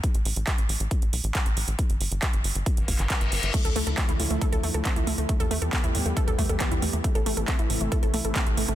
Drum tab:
CC |----------------|----------------|x---------------|----------------|
HH |xxoxxxoxxxoxxxox|xxoxxxoxxxoxxxox|xxoxxxoxxxoxxxox|xxoxxxoxxxoxxxox|
CP |----x-------x---|----x------xx---|----x-------x---|----x-------x---|
BD |o---o---o---o---|o---o---o-o-o---|o---o---o---o---|o---o---o-o-o---|

CC |----------------|
HH |xxoxxxoxxxoxxxox|
CP |----x-------x---|
BD |o---o---o---o---|